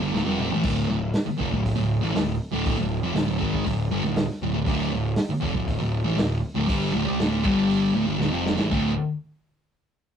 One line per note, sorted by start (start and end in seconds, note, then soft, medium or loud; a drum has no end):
0.00 0.12 G1 loud
0.00 0.12 G2 loud
0.00 0.12 D3 loud
0.00 snare soft
0.13 0.25 D1 loud
0.13 0.24 D2 loud
0.13 0.25 A2 loud
0.13 snare medium
0.25 0.49 F1 loud
0.25 0.49 F2 medium
0.25 0.49 C3 loud
0.25 0.50 F3 loud
0.25 high tom medium
0.38 mid tom loud
0.51 0.62 A1 medium
0.51 0.62 A2 loud
0.51 0.63 E3 loud
0.51 floor tom loud
0.63 0.87 D1 loud
0.63 0.87 D2 medium
0.63 0.88 A2 loud
0.63 0.88 D3 loud
0.63 kick loud
0.63 crash loud
0.89 1.12 D1 medium
0.89 1.08 D2 medium
0.89 1.09 A2 medium
1.14 snare loud
1.14 open hi-hat medium
1.26 muted distorted electric guitar stroke medium
1.26 muted picked electric bass stroke soft
1.38 1.51 F1 loud
1.38 1.50 F2 medium
1.38 1.51 C3 loud
1.38 kick medium
1.51 1.76 D1 medium
1.51 1.71 D2 medium
1.51 1.71 A2 medium
1.51 kick medium
1.65 kick medium
1.65 open hi-hat medium
1.76 2.00 D1 medium
1.76 1.96 D2 medium
1.76 1.97 A2 medium
2.01 2.14 A1 loud
2.01 2.13 A2 loud
2.01 2.14 E3 loud
2.01 snare soft
2.14 2.38 D1 medium
2.14 2.34 D2 medium
2.14 2.35 A2 medium
2.14 snare loud
2.14 open hi-hat medium
2.52 2.76 D1 loud
2.52 2.76 D2 medium
2.52 2.77 A2 loud
2.52 2.77 D3 loud
2.66 kick loud
2.66 open hi-hat medium
2.78 3.01 D1 medium
2.78 2.98 D2 medium
2.78 2.98 A2 medium
3.02 3.13 F1 loud
3.02 3.15 F2 medium
3.02 3.15 C3 loud
3.14 3.26 D1 medium
3.14 3.26 D2 medium
3.14 3.26 A2 medium
3.14 snare loud
3.14 open hi-hat medium
3.27 3.39 D1 medium
3.27 3.38 D2 medium
3.27 3.39 A2 medium
3.39 3.64 G#1 loud
3.39 3.64 G#2 loud
3.39 3.64 D#3 loud
3.39 3.65 G#3 loud
3.39 kick medium
3.54 kick medium
3.65 3.89 D1 medium
3.65 3.86 D2 medium
3.65 3.86 A2 medium
3.65 kick loud
3.65 open hi-hat medium
3.90 4.02 G1 loud
3.90 4.03 G2 loud
3.90 4.03 D3 loud
4.03 4.26 D1 medium
4.03 4.24 D2 medium
4.03 4.24 A2 medium
4.03 snare soft
4.16 snare loud
4.16 open hi-hat medium
4.30 snare soft
4.42 4.53 D1 medium
4.42 4.52 D2 medium
4.42 4.53 A2 medium
4.54 4.65 D1 medium
4.54 4.65 D2 medium
4.54 4.66 A2 medium
4.66 4.90 D1 loud
4.66 4.90 D2 loud
4.66 4.91 A2 loud
4.66 4.91 D3 loud
4.66 kick loud
4.66 open hi-hat medium
4.91 5.15 D1 medium
4.91 5.11 D2 medium
4.91 5.12 A2 medium
5.16 snare loud
5.16 open hi-hat medium
5.29 muted picked electric bass stroke soft
5.29 muted distorted electric guitar stroke medium
5.41 5.54 F1 loud
5.41 5.53 F2 loud
5.41 5.54 C3 loud
5.41 kick medium
5.54 5.78 D1 medium
5.54 5.74 D2 medium
5.54 5.75 A2 medium
5.54 kick medium
5.68 kick loud
5.68 open hi-hat medium
5.79 6.03 D1 medium
5.79 6.00 D2 medium
5.79 6.00 A2 medium
6.04 6.17 A1 loud
6.04 6.17 A2 loud
6.04 6.17 E3 loud
6.04 snare soft
6.18 6.42 D1 medium
6.18 6.38 D2 medium
6.18 6.38 A2 medium
6.18 snare loud
6.18 open hi-hat medium
6.55 6.67 D1 loud
6.55 6.67 D2 loud
6.55 6.68 A2 loud
6.68 6.92 G1 loud
6.68 6.93 G2 loud
6.68 6.93 D3 loud
6.68 6.93 G3 loud
6.68 kick loud
6.68 open hi-hat medium
6.93 7.05 D1 loud
6.93 7.05 D2 medium
6.93 7.05 A2 loud
7.05 7.17 C2 loud
7.05 7.18 C3 medium
7.05 7.18 G3 loud
7.18 7.42 D1 loud
7.18 7.43 D2 medium
7.18 7.44 A2 loud
7.18 7.44 D3 loud
7.18 snare loud
7.18 open hi-hat medium
7.43 7.91 G1 loud
7.43 7.93 G2 loud
7.43 7.94 D3 loud
7.43 7.94 G3 loud
7.43 kick loud
7.70 open hi-hat medium
7.94 8.06 D1 medium
7.94 8.06 D2 loud
7.94 8.06 A2 loud
8.06 8.18 G1 loud
8.06 8.19 G2 medium
8.06 8.19 D3 loud
8.19 8.31 D1 loud
8.19 8.31 D2 loud
8.19 8.31 A2 loud
8.19 snare medium
8.31 8.56 F1 medium
8.31 8.56 F2 loud
8.31 8.57 C3 medium
8.31 8.57 F3 loud
8.46 snare loud
8.56 8.69 A1 loud
8.56 8.69 A2 loud
8.56 8.70 E3 loud
8.56 snare medium
8.70 8.95 D1 loud
8.70 8.90 D2 loud
8.70 8.91 A2 loud
8.70 8.91 D3 loud
8.70 kick loud
8.70 crash medium